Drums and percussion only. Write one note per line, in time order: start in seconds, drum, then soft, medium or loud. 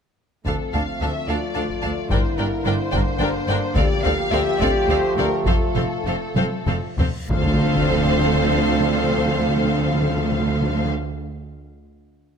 0.46 taiko soft
1.70 taiko soft
2.11 taiko medium
2.94 taiko medium
3.76 taiko medium
4.60 taiko medium
5.46 taiko medium
5.76 taiko mid soft
6.36 taiko high medium
6.67 taiko low-mid medium
6.97 taiko low medium
7.29 taiko medium